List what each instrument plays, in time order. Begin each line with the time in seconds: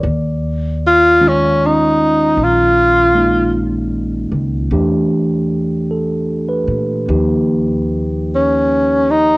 Already playing: tine electric piano D5
0.03 upright bass D#2
0.87 tenor saxophone F4
1.21 tine electric piano D#3 G#3 C#4 F4
1.28 tenor saxophone C#4
1.66 tenor saxophone D#4
2.37 upright bass A#1
2.44 tenor saxophone F4
3.15 tine electric piano G#3 A#3 D#4
4.32 upright bass C#2
4.71 upright bass E2, tine electric piano E3 A3 D4 G4
5.91 tine electric piano A4
6.49 tine electric piano B4
6.67 upright bass A#2
7.08 upright bass D#2, tine electric piano F3 A#3 D#4 G4
8.35 tenor saxophone C#4
9.11 tenor saxophone D#4